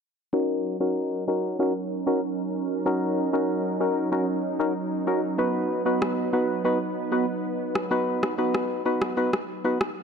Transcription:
0.33 10.03 F#3 medium
0.33 0.77 C#4 medium
0.33 5.35 C#4 medium
0.33 0.77 D#4 medium
0.33 10.03 D#4 medium
0.33 0.77 F#4 medium
0.33 0.77 A#4 loud
0.33 5.35 A#4 medium
0.80 1.24 C#4 medium
0.80 1.24 D#4 medium
0.80 1.24 F#4 medium
0.80 1.24 A#4 medium
1.28 1.57 C#4 medium
1.28 1.57 D#4 medium
1.28 1.57 F#4 medium
1.28 1.57 A#4 medium
1.59 1.73 C#4 medium
1.59 1.73 D#4 medium
1.59 1.73 F#4 medium
1.59 1.73 A#4 loud
2.06 2.20 C#4 medium
2.06 2.20 D#4 medium
2.06 2.21 F#4 medium
2.06 2.21 A#4 medium
2.86 3.29 C#4 medium
2.86 3.29 D#4 medium
2.86 3.30 F#4 medium
2.86 3.30 A#4 loud
3.33 3.77 C#4 medium
3.33 3.77 D#4 medium
3.33 3.77 F#4 medium
3.33 3.77 A#4 medium
3.80 4.09 C#4 medium
3.80 4.10 D#4 medium
3.80 4.10 F#4 medium
3.80 4.10 A#4 medium
4.12 4.26 C#4 medium
4.12 4.26 D#4 medium
4.12 4.26 F#4 medium
4.12 4.26 A#4 medium
4.59 4.73 C#4 medium
4.59 4.73 D#4 medium
4.59 4.73 F#4 medium
4.59 4.73 A#4 medium
5.07 5.20 C#4 medium
5.07 5.21 D#4 medium
5.07 5.21 F#4 medium
5.07 5.21 A#4 medium
5.38 5.82 B3 medium
5.38 10.03 B3 medium
5.38 5.82 D#4 medium
5.38 5.82 F#4 medium
5.38 10.03 B4 medium
5.38 5.82 B4 loud
5.85 6.29 B3 medium
5.85 6.29 D#4 medium
5.85 6.30 F#4 medium
5.85 6.30 B4 medium
6.02 cross-stick medium
6.33 6.62 B3 medium
6.33 6.62 D#4 medium
6.33 6.62 F#4 medium
6.33 6.62 B4 medium
6.64 6.78 B3 medium
6.64 6.78 D#4 medium
6.64 6.78 F#4 medium
6.64 6.79 B4 medium
7.12 7.26 B3 medium
7.12 7.26 D#4 medium
7.12 7.26 F#4 medium
7.12 7.26 B4 medium
7.75 cross-stick medium
7.91 8.35 B3 medium
7.91 8.35 D#4 medium
7.91 8.35 F#4 medium
7.91 8.35 B4 loud
8.23 cross-stick medium
8.38 8.82 B3 medium
8.38 8.82 D#4 medium
8.38 8.82 F#4 medium
8.38 8.82 B4 medium
8.55 cross-stick medium
8.85 9.15 B3 medium
8.85 9.15 D#4 medium
8.85 9.15 F#4 medium
8.85 9.15 B4 medium
9.02 cross-stick medium
9.17 9.31 B3 medium
9.17 9.31 D#4 medium
9.17 9.31 F#4 medium
9.17 9.31 B4 loud
9.33 cross-stick medium
9.64 9.78 B3 medium
9.64 9.78 D#4 medium
9.64 9.78 F#4 medium
9.64 9.79 B4 medium
9.81 cross-stick medium

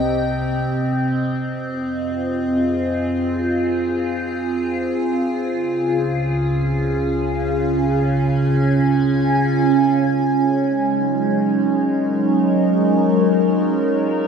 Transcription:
0.00 1.05 C2 medium
0.00 1.09 C3 medium
0.00 5.48 C4 medium
0.00 1.10 G4 medium
0.00 2.61 D#5 medium
0.00 1.09 G5 medium
1.10 5.43 F2 medium
1.54 9.96 F4 medium
2.17 11.51 G#4 medium
5.47 9.89 C#2 medium
5.47 9.96 C#3 medium
6.33 13.52 C#4 medium
7.45 13.35 G#5 medium
9.94 14.28 G#3 medium
9.94 14.28 F4 medium
9.94 14.28 F5 medium
10.23 14.28 D#4 medium
10.66 14.28 C#5 medium
10.76 14.28 F#3 medium
11.48 14.28 A#4 medium

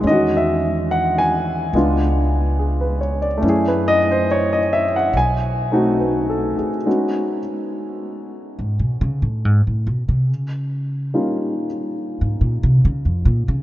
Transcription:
0.00 1.69 E2 medium
0.00 1.72 G#3 medium
0.00 1.74 C#4 medium
0.07 1.75 D#3 soft
0.07 0.33 D#5 medium
0.11 1.77 F#4 medium
0.37 0.87 E5 medium
0.91 1.17 F#5 medium
1.18 1.99 G#5 medium
1.73 3.39 C#2 medium
1.73 3.44 G#3 soft
1.73 3.44 B3 soft
1.73 3.44 D4 soft
1.73 3.45 F4 medium
2.59 2.99 G#4 soft
2.81 3.17 B4 soft
3.01 3.27 C#5 soft
3.22 3.52 D5 soft
3.38 5.11 A3 medium
3.38 5.13 C#4 medium
3.43 5.10 F#2 medium
3.43 5.15 E4 soft
3.49 5.17 G#4 medium
3.68 3.98 B4 medium
3.88 4.08 D#5 medium
4.11 4.26 C5 medium
4.31 4.58 C#5 medium
4.53 4.83 D#5 medium
4.73 4.93 E5 medium
4.96 5.11 F#5 medium
5.13 6.55 B1 medium
5.13 6.70 G#5 medium
5.72 6.86 A3 soft
5.72 6.87 C4 soft
5.72 6.85 D#4 soft
5.72 6.85 F#4 medium
5.99 6.55 B4 soft
6.30 6.74 A4 soft
6.58 7.03 G#4 soft
6.58 muted upright bass stroke soft
6.86 7.39 G#3 soft
6.86 7.39 B3 soft
6.86 7.39 C#4 soft
6.86 7.39 D#4 soft
6.86 7.39 F#4 soft
8.59 8.79 G#2 medium
8.79 9.01 B2 medium
9.01 9.22 C#3 medium
9.22 9.45 A2 medium
9.45 9.66 G#2 medium
9.67 9.86 A2 medium
9.87 10.07 B2 medium
10.08 10.30 C3 medium
10.30 11.14 C#3 medium
11.14 11.66 G3 soft
11.14 11.66 A#3 soft
11.14 11.66 C#4 soft
11.14 11.66 D#4 soft
11.14 11.66 F4 soft
12.21 12.40 G#2 medium
12.41 12.62 A#2 medium
12.63 12.80 C3 medium
12.85 13.05 C#3 medium
13.05 13.25 F2 medium
13.25 13.46 A#2 medium
13.48 13.63 C#3 medium

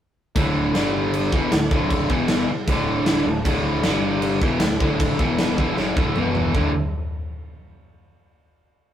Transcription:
0.35 0.72 D1 loud
0.35 0.74 D2 medium
0.35 0.74 A2 medium
0.35 0.74 D3 medium
0.35 kick loud
0.35 crash medium
0.75 1.29 G1 medium
0.75 1.32 G2 medium
0.75 1.33 D3 loud
0.75 1.33 G3 loud
0.75 snare loud
0.75 crash medium
1.14 crash medium
1.32 1.51 E1 medium
1.32 1.52 E2 medium
1.32 1.52 B2 loud
1.32 1.52 E3 loud
1.32 kick loud
1.52 1.70 D1 medium
1.52 1.68 D2 medium
1.52 1.68 A2 medium
1.52 snare loud
1.52 crash medium
1.71 2.07 D1 loud
1.71 2.10 D2 medium
1.71 2.10 A2 loud
1.71 2.10 D3 loud
1.71 kick loud
1.90 kick loud
1.90 crash medium
2.10 2.46 E1 loud
2.10 2.48 E2 medium
2.10 2.49 B2 loud
2.10 2.49 E3 loud
2.10 kick loud
2.28 snare loud
2.28 crash medium
2.48 muted picked electric bass stroke soft
2.48 muted distorted electric guitar stroke medium
2.68 3.22 D1 loud
2.68 3.24 D2 loud
2.68 3.25 A2 loud
2.68 3.26 D3 loud
2.68 kick loud
2.68 crash medium
3.06 snare loud
3.06 crash medium
3.25 3.44 D1 loud
3.25 3.41 D2 medium
3.25 3.42 A2 medium
3.45 3.82 D1 loud
3.45 3.84 D2 medium
3.45 3.84 A2 loud
3.45 3.83 D3 loud
3.45 kick loud
3.45 crash medium
3.84 4.38 G1 loud
3.84 4.42 G2 loud
3.84 4.42 D3 loud
3.84 4.43 G3 loud
3.84 snare loud
3.84 crash medium
4.22 crash medium
4.42 4.60 E1 medium
4.42 4.61 E2 medium
4.42 4.62 B2 loud
4.42 4.62 E3 loud
4.42 kick loud
4.60 4.80 D1 medium
4.60 4.78 D2 medium
4.60 4.78 A2 medium
4.60 snare loud
4.60 crash medium
4.80 5.17 D1 loud
4.80 5.19 D2 loud
4.80 5.19 A2 loud
4.80 5.20 D3 medium
4.80 kick loud
5.00 kick loud
5.00 crash medium
5.19 5.55 E1 loud
5.19 5.57 E2 loud
5.19 5.57 B2 loud
5.19 5.59 E3 loud
5.19 kick loud
5.39 snare loud
5.39 crash medium
5.58 5.76 E1 loud
5.58 5.77 E2 medium
5.58 5.77 B2 medium
5.58 5.78 E3 medium
5.58 kick medium
5.77 5.96 F#1 medium
5.77 5.96 F#2 loud
5.77 5.96 C#3 loud
5.77 5.97 F#3 loud
5.77 snare medium
5.96 6.15 D1 medium
5.96 6.16 D2 medium
5.96 6.16 A2 medium
5.96 6.16 D3 loud
5.96 kick loud
6.16 6.53 E1 medium
6.16 6.54 E2 medium
6.16 6.55 B2 loud
6.16 6.55 E3 loud
6.16 mid tom loud
6.35 floor tom medium
6.54 6.73 D1 loud
6.54 6.70 D2 medium
6.54 6.70 A2 medium
6.54 6.71 D3 loud
6.54 kick loud
6.54 floor tom loud

